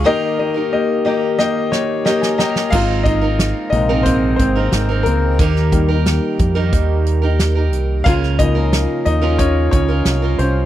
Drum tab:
CC |----------------|x---------------|----------------|----------------|
HH |----------------|--x-x-x-x-x-x-x-|x-x-x-x-x-x-x-x-|x-x-x-x-x-x-x-x-|
SD |--------o-o-oooo|----o-------o---|-o--o-------o---|-o--o-------o---|
BD |----------------|o-o-----o-o-----|o-o---o-o-------|o-o-----o-o-----|